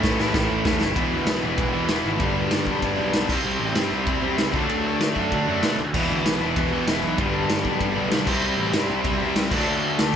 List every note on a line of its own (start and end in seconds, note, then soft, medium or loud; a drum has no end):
0.00 0.15 A1 loud
0.00 0.80 A2 medium
0.00 0.81 E3 medium
0.00 0.81 A3 loud
0.00 0.20 E4 medium
0.00 kick loud
0.00 snare medium
0.04 0.17 A2 medium
0.04 0.18 E3 medium
0.04 0.18 A3 medium
0.04 0.19 C#4 medium
0.19 0.31 A1 loud
0.19 0.35 A2 loud
0.19 0.35 E3 medium
0.19 0.34 A3 loud
0.19 0.34 C#4 loud
0.19 0.33 E4 loud
0.19 snare medium
0.34 0.46 A1 loud
0.34 0.66 A2 medium
0.34 0.65 E3 medium
0.34 0.65 A3 medium
0.34 0.65 C#4 medium
0.34 0.64 E4 loud
0.34 kick loud
0.34 snare loud
0.51 0.62 A1 medium
0.65 0.77 E2 medium
0.65 0.80 A2 medium
0.65 0.81 E3 medium
0.65 0.81 A3 medium
0.65 0.82 C#4 medium
0.65 0.82 E4 medium
0.65 kick loud
0.65 snare loud
0.81 0.93 F#1 medium
0.81 0.96 A2 medium
0.81 0.94 E3 medium
0.81 0.96 A3 medium
0.81 0.97 C#4 medium
0.81 0.97 E4 loud
0.81 snare medium
0.94 1.11 E1 medium
0.94 1.55 E2 medium
0.94 1.73 E2 loud
0.94 1.57 B2 medium
0.94 1.72 B2 loud
0.94 1.42 E3 loud
0.94 1.43 G#3 medium
0.94 1.43 B3 loud
0.94 kick loud
0.94 ride medium
0.98 1.71 E3 loud
0.98 1.41 E4 loud
1.12 1.27 D2 medium
1.27 1.43 B1 medium
1.27 snare loud
1.27 ride medium
1.42 1.57 E1 medium
1.42 1.88 E3 medium
1.42 1.89 G#3 medium
1.42 1.89 B3 medium
1.42 1.88 E4 medium
1.57 1.73 E1 medium
1.57 2.18 E2 medium
1.57 2.19 B2 medium
1.57 2.21 E3 medium
1.57 kick loud
1.57 ride medium
1.72 1.89 E2 medium
1.72 1.86 E2 medium
1.72 1.88 B2 medium
1.72 1.88 E3 medium
1.87 2.04 E1 medium
1.87 2.19 E2 medium
1.87 2.20 B2 medium
1.87 2.20 E3 medium
1.87 2.20 G#3 medium
1.87 snare loud
1.87 ride medium
1.91 2.20 B3 medium
1.91 2.21 E4 medium
2.04 2.20 G#1 medium
2.19 2.50 G1 medium
2.19 2.97 G2 loud
2.19 2.66 G2 medium
2.19 2.66 D3 loud
2.19 2.97 D3 loud
2.19 2.67 G3 medium
2.19 2.96 G3 loud
2.19 2.66 B3 loud
2.19 2.65 D4 loud
2.19 kick loud
2.19 ride medium
2.51 2.66 G1 medium
2.51 snare loud
2.51 ride medium
2.66 2.81 B1 medium
2.66 3.12 G2 medium
2.66 3.13 D3 medium
2.66 3.14 G3 medium
2.66 3.13 B3 medium
2.66 3.13 D4 medium
2.66 kick medium
2.82 2.98 G1 loud
2.82 3.29 G2 medium
2.82 3.29 D3 medium
2.82 3.29 G3 medium
2.82 kick loud
2.82 ride medium
2.97 3.13 B1 medium
2.97 3.12 G2 medium
2.97 3.13 D3 medium
2.97 3.13 G3 medium
3.13 3.28 B1 medium
3.13 3.28 G2 medium
3.13 3.29 G2 medium
3.13 3.28 D3 medium
3.13 3.29 G3 medium
3.13 3.28 G3 medium
3.13 3.30 B3 medium
3.13 3.30 D4 medium
3.13 snare loud
3.13 ride medium
3.28 3.44 C2 medium
3.28 4.05 C3 medium
3.28 3.74 C3 medium
3.28 4.07 G3 medium
3.28 3.75 G3 loud
3.28 4.07 C4 loud
3.28 3.76 C4 loud
3.28 kick loud
3.28 crash loud
3.32 3.77 E4 loud
3.44 3.59 C2 medium
3.60 3.75 A1 medium
3.75 3.91 G2 medium
3.75 4.22 C3 medium
3.75 4.23 G3 medium
3.75 4.23 C4 medium
3.75 snare loud
3.75 ride medium
3.79 4.21 E4 medium
3.91 4.06 C2 medium
3.91 4.52 C3 medium
3.91 4.54 G3 medium
3.91 4.53 C4 medium
4.06 4.21 C2 medium
4.06 4.22 C3 medium
4.06 4.22 G3 medium
4.06 4.21 C4 medium
4.06 kick loud
4.06 ride medium
4.22 4.37 C3 medium
4.22 4.52 C3 medium
4.22 4.54 G3 medium
4.22 4.53 C4 medium
4.22 4.54 C4 medium
4.22 4.53 E4 medium
4.26 4.53 C3 medium
4.37 4.53 C#2 medium
4.37 snare loud
4.37 ride medium
4.53 4.67 D2 medium
4.53 5.31 D3 medium
4.53 4.99 D3 medium
4.53 5.01 F#3 medium
4.53 5.32 A3 medium
4.53 5.01 A3 loud
4.53 5.32 D4 medium
4.53 kick loud
4.57 5.02 D4 loud
4.68 4.99 D2 medium
4.68 ride medium
5.00 5.15 D2 medium
5.00 5.47 D3 medium
5.00 5.47 F#3 medium
5.00 5.47 A3 medium
5.00 snare loud
5.00 ride medium
5.04 5.46 D4 medium
5.15 5.31 F#2 medium
5.15 5.79 D3 medium
5.15 5.78 A3 medium
5.15 5.77 D4 medium
5.15 kick medium
5.32 5.47 D2 loud
5.32 5.47 D3 medium
5.32 5.48 A3 medium
5.32 5.46 D4 medium
5.32 kick medium
5.32 ride medium
5.47 5.62 F#2 medium
5.47 5.80 D3 medium
5.47 5.79 F#3 medium
5.47 5.79 A3 medium
5.47 5.78 D4 medium
5.62 5.78 B2 loud
5.62 snare loud
5.62 ride medium
5.78 5.93 D2 medium
5.93 6.09 E1 medium
5.93 6.54 E2 medium
5.93 6.72 E2 medium
5.93 6.55 B2 loud
5.93 6.72 B2 loud
5.93 6.40 E3 medium
5.93 6.41 G#3 loud
5.93 6.40 B3 loud
5.93 kick loud
5.93 crash medium
5.98 6.71 E3 medium
5.98 6.39 E4 loud
6.09 6.24 D2 medium
6.24 6.40 B1 medium
6.24 snare loud
6.24 ride medium
6.40 6.56 E1 medium
6.40 6.85 E3 medium
6.40 6.87 G#3 medium
6.40 6.87 B3 medium
6.40 6.86 E4 medium
6.55 6.71 E1 loud
6.55 7.17 E2 medium
6.55 7.18 B2 medium
6.55 7.19 E3 medium
6.55 kick loud
6.55 ride medium
6.71 6.86 E2 medium
6.71 6.85 E2 medium
6.71 6.86 B2 medium
6.71 6.87 E3 medium
6.86 7.02 E1 medium
6.86 7.17 E2 medium
6.86 7.18 B2 medium
6.86 7.18 E3 medium
6.86 7.19 E3 medium
6.86 7.18 G#3 medium
6.86 7.19 B3 medium
6.86 7.19 E4 medium
6.86 snare loud
6.86 ride medium
7.02 7.18 B1 medium
7.18 7.48 G1 medium
7.18 7.64 G2 medium
7.18 7.95 G2 medium
7.18 7.65 D3 loud
7.18 7.96 D3 loud
7.18 7.65 G3 loud
7.18 7.95 G3 loud
7.18 7.65 B3 loud
7.18 7.64 D4 loud
7.18 kick loud
7.18 ride medium
7.50 7.64 G1 medium
7.50 snare loud
7.50 ride medium
7.64 7.80 B1 medium
7.64 8.12 D3 medium
7.64 8.12 G3 medium
7.64 8.12 B3 medium
7.64 8.11 D4 medium
7.64 kick medium
7.68 8.11 G2 medium
7.79 7.96 G1 loud
7.79 8.26 G2 medium
7.79 8.25 D3 medium
7.79 8.26 G3 medium
7.79 kick loud
7.79 ride medium
7.96 8.11 B1 medium
7.96 8.10 G2 medium
7.96 8.11 D3 medium
7.96 8.11 G3 medium
8.11 8.26 B1 medium
8.11 8.26 G2 medium
8.11 8.27 G2 medium
8.11 8.26 D3 medium
8.11 8.27 G3 medium
8.11 8.28 B3 medium
8.11 snare loud
8.11 ride medium
8.15 8.29 D4 medium
8.27 8.41 C2 medium
8.27 9.01 C3 medium
8.27 8.73 C3 medium
8.27 8.74 G3 medium
8.27 9.03 G3 loud
8.27 8.74 C4 loud
8.27 9.05 C4 loud
8.27 8.75 E4 loud
8.27 kick loud
8.27 crash loud
8.42 8.57 C2 medium
8.58 8.73 A1 medium
8.73 8.88 G2 loud
8.73 9.20 C3 medium
8.73 9.21 G3 medium
8.73 9.21 C4 medium
8.73 snare loud
8.73 ride medium
8.78 9.19 E4 medium
8.87 9.04 C2 medium
8.87 9.51 C3 medium
8.87 9.51 G3 medium
8.87 9.50 C4 medium
9.02 9.20 C2 medium
9.02 9.19 C3 medium
9.02 9.19 G3 medium
9.02 9.17 C4 medium
9.02 kick loud
9.02 ride medium
9.18 9.36 C3 medium
9.18 9.49 C3 medium
9.18 9.51 G3 medium
9.18 9.50 C4 medium
9.18 9.51 E4 medium
9.22 9.52 C3 medium
9.22 9.52 G3 medium
9.22 9.52 C4 medium
9.36 9.51 C2 loud
9.36 snare loud
9.36 ride medium
9.50 9.67 D2 medium
9.50 10.16 D3 loud
9.50 9.97 D3 medium
9.50 10.16 A3 medium
9.50 10.16 D4 medium
9.50 kick loud
9.50 crash loud
9.54 9.99 F#3 loud
9.54 10.00 A3 loud
9.54 10.00 D4 medium
9.68 9.98 D2 medium
9.98 10.13 D2 loud
9.98 10.16 D3 medium
9.98 10.16 F#3 medium
9.98 10.16 A3 medium
9.98 10.16 D4 medium
9.98 snare loud
9.98 ride medium